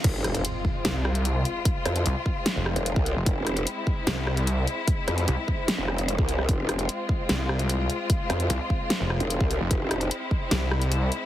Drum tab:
CC |x---------------|----------------|----------------|----------------|
HH |x-xxx---x--xx-x-|x-xxx---x--xx-x-|x-xxx---x--xx-x-|x-xxx---x--xx-x-|
SD |--r-----o-r-----|--r-----o-r-----|--r-----o-r-----|--r-----o-r----r|
BD |o-----o---------|o-----o------o--|o-----o---------|o-----o------o--|

CC |----------------|----------------|----------------|
HH |x-xxx---x--xx-x-|x-xxx---x--xx-x-|x-xxx---x--xx-x-|
SD |--r-----o-r-----|--r-----o-r-----|--r-----o-r-----|
BD |o-----o---------|o-----o------o--|o-----o---------|